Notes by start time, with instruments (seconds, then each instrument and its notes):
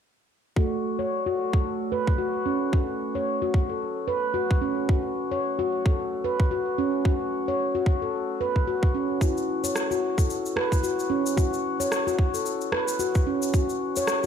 0.56 singing bowl A3 A4, handpan F#4, kick
0.99 handpan C#5
1.26 handpan F#4
1.53 kick
1.92 handpan B4
2.07 kick
2.18 handpan F#4
2.46 handpan C#4
2.73 handpan F#4, kick
3.15 handpan C#5
3.42 handpan F#4
3.54 kick
3.69 handpan A4
4.08 handpan B4
4.34 handpan F#4
4.51 kick
4.62 handpan C#4
4.89 handpan F#4, kick
5.31 handpan C#5
5.59 handpan F#4
5.86 handpan A4, kick
6.24 handpan B4
6.40 kick
6.51 handpan F#4
6.78 handpan C#4
7.05 handpan F#4, kick
7.48 handpan C#5
7.75 handpan F#4
7.86 kick
8.02 handpan A4
8.41 handpan B4
8.56 kick
8.67 handpan F#4
8.83 kick
8.95 handpan C#4
9.21 singing bowl E4, handpan F#4, kick, shaker
9.37 shaker
9.64 handpan C#5, shaker
9.76 cross-stick, shaker
9.91 handpan F#4, shaker
10.18 handpan A4, kick, shaker
10.30 shaker
10.46 shaker
10.56 handpan B4, cross-stick
10.72 kick, shaker
10.83 handpan F#4, shaker
10.99 shaker
11.10 handpan C#4
11.26 shaker
11.37 handpan F#4, kick, shaker
11.54 shaker
11.80 handpan C#5, shaker
11.92 cross-stick, shaker
12.07 handpan F#4, shaker
12.19 kick
12.34 handpan A4, shaker
12.46 shaker
12.61 shaker
12.72 handpan B4, cross-stick
12.88 shaker
13.00 handpan F#4, shaker
13.15 kick, shaker
13.27 handpan C#4
13.42 shaker
13.54 handpan F#4, kick, shaker
13.69 shaker
13.96 handpan C#5, shaker
14.07 cross-stick, shaker